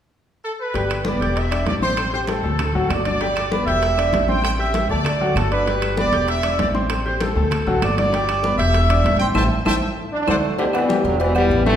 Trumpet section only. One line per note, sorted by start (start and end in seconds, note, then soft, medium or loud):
0.44 0.51 A4 medium
0.60 1.03 B4 medium
1.06 1.36 D5 medium
1.37 1.67 E5 medium
1.67 1.74 D5 medium
1.81 2.10 C5 medium
2.12 2.19 C5 medium
2.28 2.86 A4 medium
2.89 3.02 D5 medium
3.03 3.62 D5 medium
3.66 4.24 E5 loud
4.28 4.41 G5 medium
4.43 4.50 G5 medium
4.59 4.87 E5 medium
4.88 5.32 D5 loud
5.36 5.51 A4 medium
5.51 5.94 B4 medium
5.98 6.26 D5 loud
6.28 6.57 E5 loud
6.60 6.67 D5 medium
7.06 7.20 C5 medium
7.21 7.82 A4 medium
7.82 7.96 D5 medium
7.97 8.55 D5 medium
8.57 9.16 E5 loud
9.18 9.25 G5 medium
9.36 9.43 E5 medium
9.36 9.43 G5 medium
9.36 9.43 A5 medium
9.66 9.74 E5 medium
9.66 9.74 G5 medium
9.66 9.74 A5 medium
10.28 10.35 C5 medium
10.28 10.35 D5 medium
10.28 10.36 F#5 medium